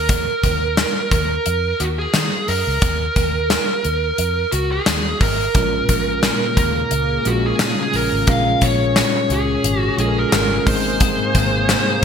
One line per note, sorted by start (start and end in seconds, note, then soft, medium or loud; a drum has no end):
0.00 0.27 D#2 medium
0.00 1.11 A#4 medium
0.09 kick loud
0.09 closed hi-hat medium
0.43 0.83 D#2 medium
0.43 kick medium
0.43 closed hi-hat medium
0.77 snare loud
0.77 closed hi-hat medium
1.11 1.37 D#2 medium
1.11 1.82 A#4 medium
1.11 kick medium
1.11 closed hi-hat medium
1.46 1.72 F2 medium
1.46 closed hi-hat medium
1.80 2.06 D#2 medium
1.80 1.85 F#4 medium
1.80 closed hi-hat medium
1.99 2.50 G#4 medium
2.14 2.28 D#3 medium
2.14 snare loud
2.14 closed hi-hat medium
2.48 2.62 F#2 medium
2.48 4.59 A#4 medium
2.48 open hi-hat medium
2.67 2.79 C#2 medium
2.82 3.08 D#2 loud
2.82 kick loud
2.82 closed hi-hat medium
3.16 3.56 D#2 medium
3.16 kick medium
3.16 closed hi-hat medium
3.50 snare medium
3.50 closed hi-hat medium
3.84 4.11 D#2 medium
3.84 closed hi-hat medium
4.18 4.44 F2 medium
4.18 closed hi-hat medium
4.52 4.78 C#2 medium
4.52 4.70 F#4 medium
4.52 closed hi-hat medium
4.72 5.23 G#4 medium
4.86 5.13 D#2 medium
4.86 snare loud
4.86 closed hi-hat medium
5.21 5.47 G#1 medium
5.21 6.57 A#4 medium
5.21 kick medium
5.21 open hi-hat medium
5.55 5.81 A#1 medium
5.55 6.54 A#2 medium
5.55 10.62 C#3 medium
5.55 6.68 G#3 medium
5.55 8.25 A#3 medium
5.55 6.68 C#4 medium
5.55 6.69 F4 medium
5.55 12.04 G#4 medium
5.55 6.69 A#4 medium
5.55 kick loud
5.55 closed hi-hat medium
5.89 6.29 A#1 medium
5.89 kick medium
5.89 closed hi-hat medium
6.23 snare medium
6.23 closed hi-hat medium
6.57 6.83 D#2 medium
6.57 7.28 A#4 loud
6.57 kick medium
6.57 closed hi-hat medium
6.91 7.17 C#2 medium
6.91 closed hi-hat medium
7.25 7.51 A#1 medium
7.25 8.11 G#3 medium
7.25 8.11 C#4 medium
7.25 8.12 F4 medium
7.25 7.46 F#4 medium
7.25 8.12 G#4 medium
7.25 closed hi-hat medium
7.46 7.96 G#4 medium
7.59 7.74 A#2 medium
7.59 snare loud
7.59 closed hi-hat medium
7.93 8.08 A#1 medium
7.93 8.30 A#4 medium
7.93 open hi-hat medium
8.12 8.24 G#1 medium
8.27 8.53 A#1 loud
8.27 9.26 A#2 medium
8.27 9.41 G#3 medium
8.27 9.41 C#4 medium
8.27 10.64 C#4 medium
8.27 9.41 F4 medium
8.27 9.42 A#4 medium
8.27 8.64 F5 loud
8.27 kick loud
8.27 closed hi-hat medium
8.61 9.01 A#1 loud
8.61 8.96 C#5 medium
8.61 kick medium
8.61 closed hi-hat medium
8.96 9.32 C#5 loud
8.96 snare loud
8.96 closed hi-hat medium
9.30 9.56 C#2 medium
9.30 9.80 G#4 loud
9.30 closed hi-hat medium
9.64 9.89 G#1 medium
9.64 closed hi-hat loud
9.80 9.95 F#4 loud
9.98 10.24 A#1 loud
9.98 10.65 G#3 medium
9.98 10.67 C#4 medium
9.98 10.67 F4 medium
9.98 10.18 G#4 medium
9.98 10.06 A4 medium
9.98 closed hi-hat medium
10.06 10.67 A#4 medium
10.18 10.67 A#4 medium
10.32 10.58 G#1 medium
10.32 snare loud
10.32 closed hi-hat medium
10.67 11.18 G#1 medium
10.67 11.65 G#2 medium
10.67 12.04 C3 medium
10.67 11.80 G#3 medium
10.67 12.04 A#3 medium
10.67 11.80 C4 medium
10.67 11.80 D#4 medium
10.67 11.81 A#4 medium
10.67 12.04 C5 loud
10.67 kick loud
10.67 open hi-hat medium
11.00 kick loud
11.00 closed hi-hat medium
11.35 11.74 G#1 loud
11.35 kick medium
11.35 closed hi-hat medium
11.69 snare loud
11.69 closed hi-hat medium